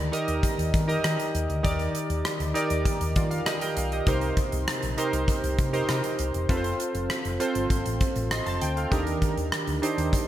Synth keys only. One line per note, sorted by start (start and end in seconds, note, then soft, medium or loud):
0.00 1.64 D#3 medium
0.00 0.12 D#4 medium
0.00 0.12 G4 medium
0.00 0.13 A#4 medium
0.00 1.64 D5 medium
0.12 0.63 D#4 medium
0.12 0.63 G4 medium
0.12 0.63 A#4 medium
0.12 0.63 D#5 medium
0.88 1.38 D#4 medium
0.88 1.39 G4 medium
0.88 1.39 A#4 medium
0.88 1.39 D#5 medium
1.63 2.51 D#3 medium
1.63 2.24 D#4 medium
1.63 2.24 G4 medium
1.63 2.24 A#4 medium
1.63 2.25 D5 medium
2.54 3.05 D#4 medium
2.54 3.05 G4 medium
2.54 3.05 A#4 medium
2.54 3.06 D5 medium
3.16 3.31 F4 soft
3.16 3.31 D5 medium
3.31 3.45 F5 medium
3.46 3.61 G4 medium
3.46 3.60 D#5 medium
3.62 3.76 A#4 medium
3.62 3.76 G5 medium
3.77 3.91 F5 medium
3.93 4.07 G4 soft
3.93 4.21 D#5 medium
4.07 4.94 C3 medium
4.07 4.67 D#4 medium
4.07 4.68 G4 medium
4.07 4.68 A#4 medium
4.07 4.68 C5 medium
4.97 5.48 D#4 medium
4.97 5.48 G4 medium
4.97 5.48 A#4 medium
4.97 5.48 C5 medium
5.73 6.23 D#4 medium
5.73 6.24 G4 medium
5.73 6.24 A#4 medium
5.73 6.24 C5 medium
6.49 7.09 C4 medium
6.49 7.10 F4 medium
6.49 7.10 A4 medium
6.49 6.56 B4 medium
6.57 7.13 C5 medium
7.40 7.90 C4 medium
7.40 7.90 F4 medium
7.40 7.91 A4 medium
7.40 7.91 C5 medium
8.31 8.46 D#5 medium
8.31 8.46 C6 medium
8.46 8.61 C5 medium
8.46 8.61 A5 medium
8.62 8.76 G5 medium
8.77 9.06 A4 soft
8.77 9.05 F5 medium
8.91 9.79 D#3 medium
8.91 9.52 D4 medium
8.91 9.52 D#4 medium
8.91 9.52 G4 medium
8.91 9.52 A#4 medium
9.82 10.28 D4 medium
9.82 10.28 D#4 medium
9.82 10.28 G4 medium
9.82 10.28 C5 medium